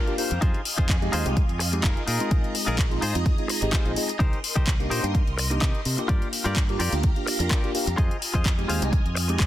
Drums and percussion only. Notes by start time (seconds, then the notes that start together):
0.07 closed hi-hat
0.18 open hi-hat
0.31 closed hi-hat
0.42 kick, closed hi-hat
0.54 closed hi-hat
0.65 open hi-hat
0.78 kick, closed hi-hat
0.89 kick, clap, closed hi-hat
1.02 closed hi-hat
1.13 open hi-hat
1.26 closed hi-hat
1.37 kick, closed hi-hat
1.49 closed hi-hat
1.60 open hi-hat
1.73 closed hi-hat
1.84 kick, clap, closed hi-hat
1.97 closed hi-hat
2.08 open hi-hat
2.20 closed hi-hat
2.31 kick, closed hi-hat
2.44 closed hi-hat
2.55 open hi-hat
2.68 closed hi-hat
2.79 kick, clap, closed hi-hat
2.91 closed hi-hat
3.02 open hi-hat
3.15 closed hi-hat
3.26 kick, closed hi-hat
3.38 closed hi-hat
3.49 open hi-hat
3.62 closed hi-hat
3.73 kick, clap, closed hi-hat
3.86 closed hi-hat
3.96 open hi-hat
4.09 closed hi-hat
4.20 kick, closed hi-hat
4.33 closed hi-hat
4.44 open hi-hat
4.56 kick
4.67 kick, clap, closed hi-hat
4.80 closed hi-hat
4.91 open hi-hat
5.04 closed hi-hat
5.15 kick, closed hi-hat
5.28 closed hi-hat
5.39 open hi-hat
5.51 closed hi-hat
5.62 kick, clap, closed hi-hat
5.75 closed hi-hat
5.85 open hi-hat
5.98 closed hi-hat
6.09 kick, closed hi-hat
6.22 closed hi-hat
6.33 open hi-hat
6.46 closed hi-hat
6.56 kick, clap, closed hi-hat
6.69 closed hi-hat
6.80 open hi-hat
6.92 closed hi-hat
7.03 kick, closed hi-hat
7.16 closed hi-hat
7.27 open hi-hat
7.40 closed hi-hat
7.51 kick, clap, closed hi-hat
7.64 closed hi-hat
7.75 open hi-hat
7.87 closed hi-hat
7.98 kick, closed hi-hat
8.11 closed hi-hat
8.22 open hi-hat
8.35 kick
8.46 kick, clap, closed hi-hat
8.59 closed hi-hat
8.70 open hi-hat
8.82 closed hi-hat
8.93 kick, closed hi-hat
9.06 closed hi-hat
9.17 open hi-hat
9.29 closed hi-hat
9.40 kick, clap, closed hi-hat